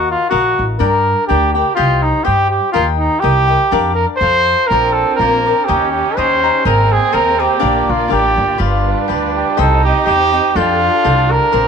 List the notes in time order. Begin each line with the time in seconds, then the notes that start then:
Already playing: D#2 F#4 A#4 D#5 F5
0.11 F4
0.30 A#1 F#4 A#4 D#5 F5
0.59 A1
0.79 G2 D4 A#4 D5 G5
1.27 D2 D4 G4 A#4 D5 G5
1.53 G4 A#4 D5 G5
1.75 C2 F4 G4 C5 D#5 G5
2.02 D#4
2.24 G2 G4 C5 D#5 G5
2.50 G4
2.72 D#2 F4 G4 A#4 D#5 G5
2.99 D#4
3.20 C2 G4 A#4 D#5
3.24 G5
3.48 A#4 D#5 G5
3.71 F2 D4 A#4 D5 F5
3.95 A#4
4.17 F2 F4 C5
4.22 A4 C5 F5
4.67 A#1 C4 A#4
4.71 C4 D4 F4 A#4 C5 D5
4.93 A4
5.16 A#1 F4 A#4
5.21 A#3 A#4 C5 D5
5.46 C4 A#4 C5 D5
5.65 G4 C#5 D#5
5.69 D#2 C#4 D#4 G4 G5 A#5
5.91 G4
6.16 D#2 C#4 C5 C#5 D#5 G5 A#5
6.44 D#5 G5 A#5
6.65 G#1 A#3 C4 G#4 A#4 C5 D#5 G#5 A#5
6.92 G#4
7.12 D#2 A#4 C5 D#5 G#5 A#5
7.39 G4 D#5 G#5 A#5
7.59 A#1 A#3 D4 F4 A#4 D5 F5
7.89 A#1 F4
8.08 A1 D4 A#4 D5 F5
8.12 G4
8.38 G1
8.58 G1 G3 D4 F4 G4 B4 D5 F5
9.08 D2 G4 B4 D5 F5
9.37 G4
9.57 C2 C4 D#4 G4 A4 C5 D#5 G5
9.84 G4
10.06 E2 G4 C5 D#5 G5
10.33 C5 D#5 G5
10.54 F2 D4 F4 A4 C5 F5 G5
11.04 C2 A4 C5 F5 G5
11.31 A#4
11.52 A#1 C4 D4 A#4 C5 D5 F5